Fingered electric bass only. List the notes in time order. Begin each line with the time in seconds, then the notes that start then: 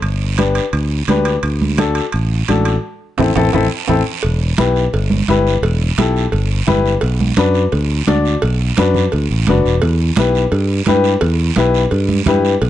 0.02 G1
0.73 D2
1.08 D2
1.43 D2
2.14 A1
2.49 A1
3.19 A1
3.36 A1
3.54 A1
3.89 A1
4.24 E1
4.59 B1
4.94 G1
5.28 G1
5.62 E1
5.98 B1
6.33 G1
6.68 G1
7.03 B1
7.38 F#2
7.73 D2
8.08 D2
8.43 B1
8.78 F#2
9.13 D2
9.31 A1
9.49 F#1
9.65 E1
9.82 E2
10.17 B1
10.52 G2
10.87 G2
11.22 E2
11.58 B1
11.92 G2
12.27 G2
12.62 B1